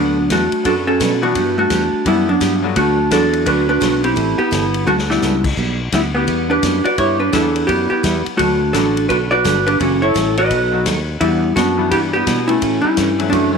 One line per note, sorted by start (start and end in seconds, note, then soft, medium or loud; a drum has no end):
0.00 0.29 D2 medium
0.00 0.16 D3 medium
0.00 0.16 F#3 medium
0.00 0.28 F#3 medium
0.00 0.17 A3 medium
0.00 0.28 B3 medium
0.00 0.17 D4 medium
0.00 0.28 D4 medium
0.00 0.17 F#4 medium
0.00 0.17 B4 medium
0.30 0.51 E2 medium
0.30 0.41 D3 medium
0.30 0.42 F#3 medium
0.30 0.42 A3 medium
0.30 0.64 A3 medium
0.30 0.63 D4 medium
0.30 0.42 D4 medium
0.30 0.42 F#4 medium
0.30 0.67 F#4 medium
0.30 0.42 B4 medium
0.30 kick soft
0.30 snare medium
0.30 hi-hat pedal medium
0.30 ride medium
0.52 muted fretless electric bass stroke soft
0.52 ride soft
0.63 0.99 F#2 medium
0.63 0.86 D3 medium
0.63 0.84 F#3 medium
0.63 0.87 F#3 medium
0.63 0.85 A3 soft
0.63 0.87 A3 medium
0.63 0.85 B3 soft
0.63 0.85 D4 soft
0.63 0.87 D4 medium
0.63 0.72 D4 medium
0.63 0.85 F#4 medium
0.63 0.87 F#4 medium
0.63 0.76 F#4 medium
0.63 0.72 A4 medium
0.63 0.87 B4 medium
0.63 kick soft
0.63 ride medium
0.87 1.20 C#4 medium
0.87 1.21 F#4 medium
0.87 1.20 A4 medium
1.00 1.34 B2 medium
1.00 1.11 D3 medium
1.00 1.12 F#3 medium
1.00 1.12 A3 medium
1.00 1.12 D4 medium
1.00 1.12 F#4 medium
1.00 1.12 B4 medium
1.00 kick soft
1.00 snare medium
1.00 hi-hat pedal medium
1.00 ride medium
1.21 1.34 E3 medium
1.21 1.34 G3 medium
1.21 1.34 B3 medium
1.21 1.55 B3 medium
1.21 1.34 D4 medium
1.21 1.55 D4 medium
1.21 1.34 E4 medium
1.21 1.58 F#4 medium
1.35 1.69 G2 medium
1.35 1.57 G3 medium
1.35 1.57 B3 medium
1.35 1.57 E4 medium
1.35 1.58 G4 medium
1.35 kick soft
1.35 ride medium
1.58 2.02 A3 medium
1.58 2.03 D4 medium
1.58 2.07 F#4 medium
1.70 1.91 E2 medium
1.70 1.82 G3 medium
1.70 1.82 B3 medium
1.70 1.82 E4 medium
1.70 1.82 G4 medium
1.70 kick soft
1.70 snare medium
1.70 hi-hat pedal medium
1.70 ride medium
1.93 muted fretless electric bass stroke soft
2.05 2.40 F#2 medium
2.05 2.25 E3 medium
2.05 2.27 G3 soft
2.05 2.26 G3 soft
2.05 2.27 G3 medium
2.05 2.27 B3 medium
2.05 2.26 B3 medium
2.05 2.27 B3 medium
2.05 2.26 D4 medium
2.05 2.27 E4 medium
2.05 2.26 E4 medium
2.05 2.27 E4 medium
2.05 2.27 G4 medium
2.05 kick soft
2.05 ride medium
2.29 2.61 F#3 medium
2.29 2.61 B3 medium
2.29 2.61 D4 medium
2.40 2.75 G2 medium
2.40 2.52 G3 medium
2.40 2.52 B3 medium
2.40 2.52 E4 medium
2.40 2.52 G4 medium
2.40 kick soft
2.40 snare medium
2.40 hi-hat pedal medium
2.40 ride medium
2.62 2.74 F#3 medium
2.62 2.75 A3 medium
2.62 2.75 B3 medium
2.62 2.75 D4 medium
2.62 2.75 F#4 medium
2.76 3.10 D2 medium
2.76 2.97 D3 medium
2.76 2.98 F#3 medium
2.76 2.97 A3 medium
2.76 3.09 A3 medium
2.76 3.09 D4 medium
2.76 2.98 D4 medium
2.76 2.98 F#4 medium
2.76 3.13 F#4 medium
2.76 2.98 B4 medium
2.76 kick soft
2.76 ride medium
3.11 3.45 E2 medium
3.11 3.22 D3 medium
3.11 3.64 F#3 medium
3.11 3.22 F#3 medium
3.11 3.64 A3 medium
3.11 3.23 A3 medium
3.11 3.64 B3 medium
3.11 3.64 D4 medium
3.11 3.23 D4 medium
3.11 3.44 D4 medium
3.11 3.23 F#4 medium
3.11 3.64 F#4 medium
3.11 3.45 F#4 medium
3.11 3.46 A4 medium
3.11 3.23 B4 medium
3.11 kick soft
3.11 snare medium
3.11 hi-hat pedal medium
3.11 ride medium
3.33 ride soft
3.46 3.80 D2 medium
3.46 3.67 D3 medium
3.46 3.67 F#3 medium
3.46 3.68 A3 medium
3.46 3.67 D4 medium
3.46 3.68 D4 medium
3.46 3.67 F#4 loud
3.46 3.68 F#4 medium
3.46 3.68 B4 loud
3.46 3.68 B4 medium
3.46 kick soft
3.46 ride medium
3.69 4.01 D4 medium
3.69 4.02 F#4 medium
3.69 4.02 B4 loud
3.80 4.16 B1 loud
3.80 3.92 D3 medium
3.80 3.92 F#3 medium
3.80 3.93 A3 medium
3.80 3.93 D4 medium
3.80 3.93 F#4 medium
3.80 3.93 B4 medium
3.80 kick soft
3.80 snare medium
3.80 hi-hat pedal medium
3.80 ride medium
4.04 4.37 C4 medium
4.04 4.36 E4 medium
4.04 4.37 G4 medium
4.04 ride soft
4.16 4.37 A1 medium
4.16 4.37 E3 medium
4.16 4.38 G3 medium
4.16 4.38 C4 medium
4.16 4.38 E4 medium
4.16 4.38 A4 medium
4.16 kick soft
4.16 ride medium
4.38 4.83 B3 medium
4.38 4.84 E4 medium
4.38 4.87 G4 medium
4.51 4.86 G1 medium
4.51 4.63 E3 medium
4.51 4.63 G3 medium
4.51 4.63 C4 medium
4.51 4.63 E4 medium
4.51 4.63 A4 medium
4.51 kick soft
4.51 snare medium
4.51 hi-hat pedal medium
4.51 ride medium
4.74 ride soft
4.87 5.21 D2 medium
4.87 5.08 D3 medium
4.87 5.08 F#3 medium
4.87 4.93 A3 medium
4.87 5.09 A3 medium
4.87 5.08 D4 medium
4.87 5.04 D4 medium
4.87 5.08 F#4 medium
4.87 4.93 F#4 loud
4.87 5.09 B4 medium
4.87 high tom soft
4.98 snare medium
5.10 5.42 G3 medium
5.10 5.45 B3 medium
5.10 5.45 E4 medium
5.10 snare medium
5.22 5.56 C#2 medium
5.22 5.34 D3 medium
5.22 5.34 F#3 medium
5.22 5.34 A3 medium
5.22 5.34 D4 medium
5.22 5.34 F#4 medium
5.22 5.34 B4 medium
5.22 snare medium
5.22 hi-hat pedal medium
5.44 kick medium
5.44 crash medium
5.57 5.91 B1 medium
5.57 5.79 G3 medium
5.57 5.79 B3 medium
5.57 5.79 E4 medium
5.57 5.79 G4 medium
5.57 kick soft
5.92 6.27 D2 loud
5.92 6.04 G3 medium
5.92 5.99 G3 medium
5.92 6.04 B3 medium
5.92 6.10 B3 medium
5.92 6.04 E4 medium
5.92 6.00 E4 medium
5.92 6.05 G4 medium
5.92 kick soft
5.92 snare medium
5.92 hi-hat pedal soft
5.92 ride medium
6.15 6.47 B3 medium
6.15 6.50 E4 medium
6.15 6.50 G4 medium
6.27 6.62 E2 medium
6.27 6.49 G3 medium
6.27 6.49 B3 medium
6.27 6.49 E4 medium
6.27 6.49 G4 medium
6.27 kick soft
6.27 ride medium
6.50 6.82 D4 medium
6.50 6.83 G4 medium
6.50 6.87 B4 medium
6.63 6.83 F#2 medium
6.63 6.74 G3 medium
6.63 6.74 B3 medium
6.63 6.75 E4 medium
6.63 6.75 G4 medium
6.63 kick soft
6.63 snare medium
6.63 hi-hat pedal soft
6.63 ride medium
6.84 6.97 F#4 medium
6.84 6.98 B4 medium
6.84 6.97 D5 medium
6.84 muted fretless electric bass stroke soft
6.84 ride soft
6.98 7.32 G2 medium
6.98 7.19 G3 medium
6.98 7.19 B3 medium
6.98 7.19 E4 medium
6.98 7.20 G4 medium
6.98 7.19 G4 medium
6.98 7.19 C#5 loud
6.98 kick soft
6.98 ride medium
7.19 7.32 D4 medium
7.19 7.33 G4 medium
7.19 7.33 B4 medium
7.32 7.67 E2 medium
7.32 7.86 E3 medium
7.32 7.44 G3 medium
7.32 7.86 G3 medium
7.32 7.44 B3 medium
7.32 7.86 B3 medium
7.32 7.66 D4 medium
7.32 7.86 D4 medium
7.32 7.45 E4 medium
7.32 7.87 E4 medium
7.32 7.66 E4 medium
7.32 7.45 G4 medium
7.32 7.67 A4 medium
7.32 kick soft
7.32 snare medium
7.32 hi-hat pedal medium
7.32 ride medium
7.56 ride medium
7.67 7.89 F#2 medium
7.67 7.89 G3 medium
7.67 7.88 B3 medium
7.67 7.90 B3 medium
7.67 7.90 E4 medium
7.67 7.89 G4 loud
7.67 7.90 G4 medium
7.67 kick soft
7.67 ride medium
7.90 8.23 B3 medium
7.90 8.24 E4 medium
7.90 8.23 G4 medium
7.90 muted fretless electric bass stroke soft
8.03 8.24 E2 loud
8.03 8.15 G3 medium
8.03 8.15 B3 medium
8.03 8.15 E4 medium
8.03 8.15 G4 medium
8.03 kick soft
8.03 snare medium
8.03 hi-hat pedal medium
8.03 ride medium
8.26 muted fretless electric bass stroke soft
8.26 ride soft
8.37 8.73 D2 medium
8.37 8.60 D3 medium
8.37 8.60 F#3 medium
8.37 8.71 A3 medium
8.37 8.61 A3 medium
8.37 8.72 D4 medium
8.37 8.60 D4 medium
8.37 8.74 F#4 medium
8.37 8.61 F#4 medium
8.37 8.61 B4 medium
8.37 kick soft
8.37 ride medium
8.73 9.08 A1 medium
8.73 8.86 D3 medium
8.73 8.94 F#3 medium
8.73 8.86 F#3 medium
8.73 8.94 A3 medium
8.73 8.86 A3 medium
8.73 8.94 B3 medium
8.73 9.07 D4 medium
8.73 8.94 D4 medium
8.73 8.86 D4 medium
8.73 9.07 F#4 medium
8.73 8.94 F#4 medium
8.73 8.86 F#4 medium
8.73 9.09 A4 medium
8.73 8.86 B4 medium
8.73 kick soft
8.73 snare medium
8.73 hi-hat pedal medium
8.73 ride medium
8.97 ride soft
9.09 9.44 B1 medium
9.09 9.31 D3 medium
9.09 9.31 F#3 medium
9.09 9.31 A3 medium
9.09 9.16 D4 medium
9.09 9.31 D4 medium
9.09 9.19 F#4 medium
9.09 9.31 F#4 medium
9.09 9.15 B4 loud
9.09 9.31 B4 medium
9.09 kick soft
9.09 ride medium
9.31 9.64 F#4 medium
9.31 9.64 B4 medium
9.31 9.67 D5 loud
9.44 9.79 G1 loud
9.44 9.56 D3 medium
9.44 9.56 F#3 medium
9.44 9.56 A3 medium
9.44 9.56 D4 medium
9.44 9.56 F#4 medium
9.44 9.56 B4 medium
9.44 kick soft
9.44 snare medium
9.44 hi-hat pedal medium
9.44 ride medium
9.67 9.79 D4 medium
9.67 9.82 G4 medium
9.67 9.81 B4 loud
9.67 ride soft
9.80 10.14 F#1 medium
9.80 10.01 C#3 medium
9.80 10.01 E3 medium
9.80 10.02 A3 medium
9.80 10.01 C#4 medium
9.80 10.02 C#4 medium
9.80 10.01 F#4 medium
9.80 10.02 F#4 medium
9.80 10.03 A4 medium
9.80 kick soft
9.80 ride medium
10.02 10.35 E4 medium
10.02 10.35 A4 medium
10.02 10.38 C#5 medium
10.14 10.49 A1 medium
10.14 10.26 C#3 medium
10.14 10.26 E3 medium
10.14 10.26 A3 medium
10.14 10.27 C#4 medium
10.14 10.27 F#4 medium
10.14 kick soft
10.14 snare medium
10.14 hi-hat pedal medium
10.14 ride medium
10.37 10.83 F#4 medium
10.37 10.82 B4 medium
10.37 10.83 D#5 medium
10.37 ride soft
10.51 10.85 B1 medium
10.51 10.72 B2 medium
10.51 10.72 F#3 medium
10.51 10.72 A3 medium
10.51 10.72 D#4 medium
10.51 10.72 F#4 medium
10.51 kick soft
10.51 ride medium
10.71 10.84 F#3 medium
10.71 10.84 A3 medium
10.71 10.84 B3 medium
10.71 10.84 D#4 medium
10.71 10.85 F#4 medium
10.86 11.20 D#2 medium
10.86 10.97 B2 medium
10.86 10.97 F#3 medium
10.86 10.97 A3 medium
10.86 10.97 D#4 medium
10.86 10.97 F#4 medium
10.86 kick soft
10.86 snare medium
10.86 hi-hat pedal medium
10.86 ride medium
11.21 11.55 E2 medium
11.21 11.42 E3 medium
11.21 11.54 G3 medium
11.21 11.54 B3 medium
11.21 11.42 B3 medium
11.21 11.43 D4 medium
11.21 11.53 E4 medium
11.21 11.43 G4 medium
11.21 kick soft
11.21 ride medium
11.54 11.90 F#2 medium
11.54 11.68 E3 medium
11.54 11.68 B3 medium
11.54 11.89 B3 medium
11.54 11.88 D4 medium
11.54 11.68 D4 medium
11.54 11.91 F#4 medium
11.54 11.68 G4 medium
11.54 kick soft
11.54 snare medium
11.54 hi-hat pedal medium
11.54 ride medium
11.77 12.23 E3 medium
11.77 12.24 G3 medium
11.77 12.24 B3 medium
11.77 12.24 D4 medium
11.77 12.24 E4 medium
11.90 12.26 G2 medium
11.90 12.13 E3 medium
11.90 12.13 B3 medium
11.90 11.99 B3 medium
11.90 12.13 D4 medium
11.90 12.01 E4 medium
11.90 11.97 G4 medium
11.90 12.14 G4 medium
11.90 kick soft
11.90 ride medium
12.12 12.47 B3 medium
12.12 12.46 E4 medium
12.12 12.50 G4 medium
12.27 12.61 B2 medium
12.27 12.38 E3 medium
12.27 12.38 B3 medium
12.27 12.38 D4 medium
12.27 12.39 G4 medium
12.27 kick soft
12.27 snare medium
12.27 hi-hat pedal medium
12.27 ride medium
12.47 12.82 A3 medium
12.47 12.81 C#4 medium
12.47 12.80 E4 medium
12.47 ride soft
12.62 12.83 A2 medium
12.62 12.83 C#3 medium
12.62 12.83 E3 medium
12.62 12.84 A3 medium
12.62 12.84 C#4 medium
12.62 12.84 F#4 medium
12.62 kick soft
12.62 ride medium
12.82 13.29 G3 medium
12.82 13.28 C#4 medium
12.82 13.28 E4 medium
12.82 muted fretless electric bass stroke soft
12.97 13.32 G2 medium
12.97 13.09 C#3 medium
12.97 13.09 E3 medium
12.97 13.09 A3 medium
12.97 13.09 C#4 medium
12.97 13.09 F#4 medium
12.97 kick soft
12.97 snare medium
12.97 hi-hat pedal medium
12.97 ride medium
13.19 13.58 E3 medium
13.19 13.58 F#3 medium
13.19 13.58 A3 medium
13.19 13.58 C#4 medium
13.19 13.58 E4 medium
13.19 ride soft
13.30 13.58 F#2 medium
13.30 13.54 C#3 medium
13.30 13.53 F#3 medium
13.30 13.53 A3 medium
13.30 13.55 A3 medium
13.30 13.52 D4 medium
13.30 kick soft
13.30 ride medium
13.34 13.55 E3 medium
13.34 13.55 C#4 medium
13.34 13.55 F#4 medium
13.52 13.58 A3 medium
13.52 13.58 C#4 medium